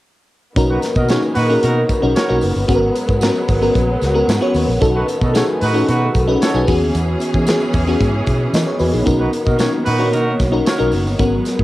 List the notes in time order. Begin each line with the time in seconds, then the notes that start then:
0.56 B1 D#3 A#3 B3 C#4 D#4 F#4 A#4, kick, closed hi-hat, tambourine
0.69 D#4 F#4 B4
0.82 snare, closed hi-hat, tambourine
0.95 B2 F#4 A#4 D#5, kick, tambourine
1.08 C#4 D#4 F#4 G#4 A#4 C#5, snare, closed hi-hat, tambourine
1.22 tambourine
1.35 A#2 D#4 F#4 B4, open hi-hat, tambourine
1.49 C#4 D#4 F#4 A#4
1.62 B2 D#4 F#4 A#4, closed hi-hat, tambourine
1.89 kick, closed hi-hat, tambourine
2.02 B1 C#4 D#4 F#4 A#4
2.15 F#4 A#4 C#5, snare, closed hi-hat, tambourine
2.29 B1 C#4 D#4 F#4 A#4
2.41 F#1, open hi-hat, tambourine
2.56 G1, tambourine
2.68 G#1 F#3 G#3 B3 C#4 F#4 G#4, kick, closed hi-hat, tambourine
2.75 A#4
2.95 closed hi-hat, tambourine
3.08 G#2, kick, tambourine
3.21 B3 C#4 F#4 A#4, snare, closed hi-hat, tambourine
3.35 tambourine
3.48 G#1, kick, open hi-hat, tambourine
3.61 B3 C#4 F#4 A#4, tambourine
3.75 A#1, kick, closed hi-hat, tambourine
4.01 C#2, snare, closed hi-hat, tambourine
4.14 B3 C#4 F#4 A#4
4.28 G#2, snare, closed hi-hat, tambourine
4.41 B3 C#4 F#4 C#5
4.54 D#2, open hi-hat, tambourine
4.68 A#1, tambourine
4.80 B1 D#3 A3 C#4 D#4 F#4 A4, kick, closed hi-hat, tambourine
4.94 D#4 F#4 B4
5.08 closed hi-hat, tambourine
5.21 B2 F#4 A4 D#5, kick, tambourine
5.34 C#4 D#4 F#4 G#4 A4 C#5, snare, closed hi-hat, tambourine
5.61 A2 D#4 F#4 B4, open hi-hat, tambourine
5.74 C#4 D#4 F#4 A4, tambourine
5.87 B2 D#4 F#4 B4, closed hi-hat, tambourine
6.14 B1, kick, closed hi-hat, tambourine
6.27 C#4 D#4 F#4 B4
6.41 F#4 A4 C#5, snare, closed hi-hat, tambourine
6.54 B1 C#4 D#4 F#4 G#4
6.67 E2 E3 B3 C#4 F#4 G#4, kick, open hi-hat, tambourine
6.81 D#2
6.95 E2, closed hi-hat, tambourine
7.20 closed hi-hat, tambourine
7.33 E3, kick, tambourine
7.46 B3 C#4 F#4 G#4, snare, closed hi-hat, tambourine
7.60 tambourine
7.73 E2, kick, open hi-hat, tambourine
7.87 B3 C#4 F#4 G#4, tambourine
8.01 G#2, kick, closed hi-hat, tambourine
8.26 B2, kick, closed hi-hat, tambourine
8.53 E3 A#4 D#5, snare, closed hi-hat, tambourine
8.67 G#4 C#5
8.79 E2 F#4 B4, open hi-hat, tambourine
8.92 A#1 D#4 G#4, tambourine
9.05 B1 D#3 A#3 C#4 D#4 F#4 A#4, kick, closed hi-hat, tambourine
9.19 D#4 F#4 B4
9.33 closed hi-hat, tambourine
9.45 B2 F#4 A#4 D#5, kick, tambourine
9.58 C#4 D#4 F#4 A#4 C#5, snare, closed hi-hat, tambourine
9.72 tambourine
9.85 A#2 D#4 F#4 B4, open hi-hat, tambourine
9.99 C#4 D4 F#4 C#5
10.06 D#4
10.12 B2 D#4 F#4 A#4, closed hi-hat, tambourine
10.39 B1, kick, snare, closed hi-hat, tambourine
10.52 C#4 D#4 F#4 A#4
10.66 F#4 A#4 C#5, snare, closed hi-hat, tambourine
10.78 B1 C#4 D#4 F#4 A#4
10.92 F#1, open hi-hat, tambourine
11.07 G1, tambourine
11.18 G#1 F#3 G#3 B3 C#4 F#4 A#4, kick, closed hi-hat, tambourine
11.45 snare, closed hi-hat, tambourine
11.59 G#2, kick